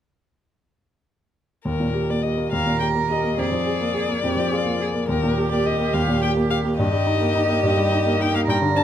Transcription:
1.65 2.51 D#2 soft
1.65 2.11 A#4 soft
1.80 2.03 A#2 soft
1.94 2.17 G4 soft
2.10 2.32 A#3 soft
2.10 2.24 D5 soft
2.23 2.46 G4 soft
2.23 2.51 D#5 soft
2.37 2.61 A#3 soft
2.52 3.36 D#2 soft
2.52 3.34 A#4 soft
2.52 2.79 F5 soft
2.67 2.89 A#2 soft
2.80 3.04 G4 soft
2.80 2.88 G5 soft
2.95 3.18 A#3 soft
3.09 3.32 G4 soft
3.09 3.40 D#5 soft
3.24 3.38 A#3 soft
3.38 4.22 F2 soft
3.38 4.22 G#4 soft
3.38 5.08 D5 medium
3.51 3.75 F3 soft
3.67 3.89 G#4 soft
3.81 4.03 A#3 soft
3.94 4.17 G#4 soft
4.09 4.32 A#3 soft
4.23 5.06 F2 soft
4.23 4.55 G4 soft
4.37 4.60 F3 soft
4.51 4.81 F4 soft
4.51 4.74 G#4 soft
4.65 4.88 A#3 soft
4.80 5.03 G#4 soft
4.80 4.89 G#4 soft
4.94 5.08 A#3 soft
5.09 5.92 D#2 soft
5.09 6.75 G4 soft
5.09 5.51 A#4 soft
5.23 5.46 A#2 soft
5.38 5.60 G4 soft
5.52 5.75 A#3 soft
5.52 5.67 D5 soft
5.65 5.88 G4 soft
5.65 5.95 D#5 soft
5.80 6.02 A#3 soft
5.94 6.76 D#2 soft
5.94 6.22 F5 soft
6.08 6.31 A#2 soft
6.22 6.45 G4 soft
6.22 6.31 G5 medium
6.36 6.59 A#3 soft
6.50 6.73 G4 soft
6.50 6.58 F5 soft
6.64 6.78 A#3 soft
6.79 7.61 G2 soft
6.79 8.45 G4 medium
6.79 8.22 D#5 medium
6.92 7.15 G3 soft
7.06 7.29 D#4 soft
7.21 7.43 A#3 soft
7.35 7.58 D#4 soft
7.49 7.72 A#3 soft
7.63 8.45 G2 soft
7.77 8.00 G3 soft
7.91 8.14 D#4 soft
8.06 8.28 A#3 soft
8.20 8.42 D#4 soft
8.20 8.34 G5 medium
8.34 8.48 A#3 soft
8.34 8.41 F5 medium
8.47 8.84 G2 soft
8.47 8.84 A#4 medium
8.47 8.58 G5 medium
8.62 8.84 D3 soft
8.75 8.84 D4 soft
8.75 8.84 A5 medium

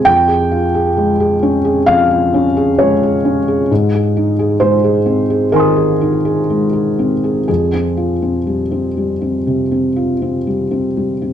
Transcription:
0.05 1.83 F2 medium
0.05 1.87 G5 loud
0.28 0.64 G#4 soft
0.51 0.87 F4 soft
0.75 1.11 G#4 medium
0.97 1.33 G#3 soft
1.20 1.56 G#4 soft
1.43 1.78 C#4 soft
1.65 2.00 G#4 soft
1.86 3.66 F2 medium
1.86 2.77 F5 medium
2.11 2.46 F4 soft
2.34 2.70 C#4 soft
2.57 2.92 G#4 medium
2.79 3.16 G#3 soft
2.79 3.71 C#5 medium
3.03 3.39 G#4 soft
3.25 3.61 C#4 soft
3.48 3.71 G#4 soft
3.71 5.51 G#2 medium
3.94 4.30 G#4 soft
4.17 4.53 D#4 soft
4.39 4.76 G#4 soft
4.60 4.99 G#3 soft
4.60 5.54 C5 medium
4.84 5.22 G#4 soft
5.06 5.44 C4 soft
5.30 5.68 G#4 soft
5.52 5.92 D#3 soft
5.52 7.47 A#4 medium
5.52 7.44 G#5 soft
5.56 7.45 C6 soft
5.56 7.47 D#6 soft
5.76 6.15 G#4 soft
6.01 6.40 D#4 soft
6.25 6.64 G#4 soft
6.50 6.89 G#3 soft
6.73 7.13 G#4 soft
6.99 7.38 C4 soft
7.24 7.46 G#4 soft
7.48 9.42 F2 soft
7.48 10.46 G#4 medium
7.73 8.13 C4 soft
7.97 8.37 F4 soft
8.22 8.62 C4 soft
8.47 8.86 G3 soft
8.71 9.11 C4 soft
8.97 9.36 G3 soft
9.21 9.61 C4 soft
9.47 9.87 C3 soft
9.71 10.12 C4 soft
9.96 10.37 F4 soft
10.22 10.62 C4 soft
10.47 10.87 G3 soft
10.71 11.12 C4 soft
10.97 11.33 G3 soft
11.22 11.33 C4 soft

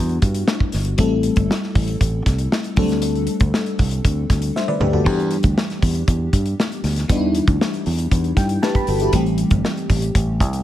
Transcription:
0.00 0.17 E2 loud
0.00 0.95 G3 medium
0.00 0.95 B3 medium
0.00 0.96 D4 medium
0.00 0.96 E4 medium
0.00 0.96 F#4 medium
0.09 closed hi-hat soft
0.22 0.42 G2 medium
0.22 kick medium
0.22 closed hi-hat medium
0.34 closed hi-hat medium
0.48 snare loud
0.60 kick medium
0.72 0.94 G1 loud
0.72 snare soft
0.72 open hi-hat medium
0.85 closed hi-hat medium
0.98 1.29 A1 loud
0.98 2.73 G3 medium
0.98 2.73 A3 medium
0.98 2.74 C4 medium
0.98 2.74 E4 medium
0.98 2.74 A4 medium
0.98 kick loud
0.98 closed hi-hat medium
1.23 closed hi-hat medium
1.36 1.47 G1 medium
1.36 kick loud
1.36 closed hi-hat medium
1.51 snare loud
1.63 snare soft
1.75 1.95 A1 loud
1.75 kick loud
1.75 open hi-hat medium
1.88 closed hi-hat medium
2.01 2.21 A1 loud
2.01 kick loud
2.01 closed hi-hat medium
2.26 2.46 C2 medium
2.26 kick medium
2.26 snare soft
2.26 closed hi-hat medium
2.38 closed hi-hat medium
2.52 snare loud
2.64 closed hi-hat soft
2.76 3.27 D2 loud
2.76 2.83 F#3 medium
2.76 4.77 A3 medium
2.76 4.77 C4 medium
2.76 4.77 D4 medium
2.76 4.53 A4 medium
2.76 kick loud
2.76 open hi-hat medium
2.82 4.79 G3 medium
2.89 snare soft
2.89 closed hi-hat medium
3.02 closed hi-hat medium
3.15 closed hi-hat soft
3.27 closed hi-hat medium
3.40 3.51 D2 loud
3.40 kick loud
3.40 closed hi-hat medium
3.54 snare loud
3.66 closed hi-hat soft
3.79 3.99 C2 medium
3.79 kick medium
3.79 open hi-hat medium
3.91 closed hi-hat medium
4.05 4.24 D2 medium
4.05 kick loud
4.05 closed hi-hat medium
4.30 4.50 D2 medium
4.30 kick medium
4.30 snare soft
4.30 closed hi-hat medium
4.42 closed hi-hat medium
4.56 4.68 C5 medium
4.56 4.68 E5 medium
4.56 snare medium
4.68 4.79 B4 medium
4.68 4.80 D5 medium
4.68 high tom medium
4.80 5.06 D2 medium
4.80 4.93 G4 medium
4.80 4.93 B4 medium
4.80 mid tom loud
4.93 5.18 F#4 medium
4.93 5.18 A4 medium
4.93 floor tom medium
5.04 5.36 E2 loud
5.04 7.05 E3 medium
5.04 7.05 G3 medium
5.04 7.05 B3 medium
5.04 7.06 D4 medium
5.04 7.06 G4 medium
5.04 kick loud
5.04 splash medium
5.20 closed hi-hat soft
5.31 closed hi-hat medium
5.43 5.54 D2 medium
5.43 kick loud
5.43 closed hi-hat medium
5.58 snare loud
5.70 snare soft
5.70 closed hi-hat soft
5.82 6.02 E2 medium
5.82 kick loud
5.82 open hi-hat medium
5.95 closed hi-hat medium
6.08 6.28 E2 medium
6.08 kick medium
6.08 closed hi-hat medium
6.33 6.53 G2 medium
6.33 kick medium
6.33 closed hi-hat medium
6.46 closed hi-hat soft
6.60 snare loud
6.72 closed hi-hat soft
6.84 7.04 D2 medium
6.84 snare soft
6.84 open hi-hat medium
6.96 snare soft
6.96 closed hi-hat medium
7.08 7.39 E2 loud
7.08 9.08 E3 medium
7.08 9.09 G3 medium
7.08 9.09 B3 medium
7.08 9.09 D4 medium
7.08 7.17 D#4 medium
7.08 kick loud
7.08 closed hi-hat medium
7.17 8.63 E4 medium
7.35 closed hi-hat medium
7.47 7.58 D2 medium
7.47 kick loud
7.47 closed hi-hat medium
7.61 snare loud
7.74 closed hi-hat soft
7.86 8.06 E2 medium
7.86 open hi-hat medium
7.98 closed hi-hat medium
8.11 8.31 E2 medium
8.11 kick medium
8.11 closed hi-hat medium
8.24 closed hi-hat soft
8.37 8.57 G2 medium
8.37 8.61 G5 medium
8.37 kick loud
8.37 snare soft
8.37 closed hi-hat medium
8.49 closed hi-hat soft
8.63 8.87 G4 medium
8.63 8.87 B4 medium
8.63 8.74 A5 medium
8.63 snare loud
8.75 9.11 B5 medium
8.75 kick medium
8.75 closed hi-hat soft
8.87 9.08 G1 loud
8.87 9.01 F#4 medium
8.87 9.00 A4 medium
8.87 open hi-hat medium
9.00 9.25 E4 medium
9.00 9.14 G4 medium
9.00 closed hi-hat medium
9.13 9.43 A1 loud
9.13 10.63 E3 medium
9.13 10.63 G3 medium
9.13 10.63 A3 medium
9.13 10.63 C4 medium
9.13 10.63 G4 medium
9.13 kick loud
9.13 closed hi-hat loud
9.26 closed hi-hat soft
9.38 closed hi-hat medium
9.51 9.61 G1 medium
9.51 kick loud
9.51 closed hi-hat medium
9.65 snare loud
9.77 closed hi-hat soft
9.90 10.09 A1 loud
9.90 kick medium
9.90 open hi-hat medium
10.02 closed hi-hat medium
10.15 10.40 A1 loud
10.15 kick loud
10.15 closed hi-hat medium
10.40 10.60 C2 loud
10.40 kick loud
10.40 closed hi-hat medium
10.53 closed hi-hat medium

